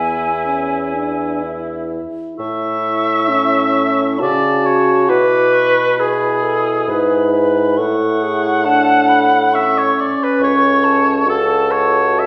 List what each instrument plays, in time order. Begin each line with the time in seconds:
Already playing: bassoon E2, french horn B3, oboe E4, clarinet E5, flute G#5
0.46 french horn C#4
0.94 french horn D4
1.43 french horn E4
2.39 bassoon A2, french horn E4, clarinet A4, oboe E5, flute C#6
3.29 french horn C#4, clarinet E4
4.19 bassoon C#3, french horn F#4, clarinet F#4, oboe D5, flute A5
4.66 oboe C#5
5.08 bassoon B2, french horn E4, oboe B4, flute D6
5.53 flute C#6
5.99 french horn E4, clarinet G#4, oboe G#4, flute B5
6.43 clarinet A4
6.88 bassoon G#2, clarinet B4, flute B5
7.34 clarinet B4
7.77 bassoon A2, clarinet A4, oboe F#5, flute C#6
8.22 clarinet G#4
8.65 french horn D4, clarinet A4, flute A5
9.09 flute B5
9.53 french horn C#4, oboe E5, flute C#6
9.78 oboe C#5
10.00 oboe D5
10.23 oboe B4
10.40 bassoon C#2, clarinet A4, oboe C#5, flute C#6
10.84 flute A5
11.27 french horn F#4, oboe A4, flute A5
11.71 oboe C#5
12.19 oboe E5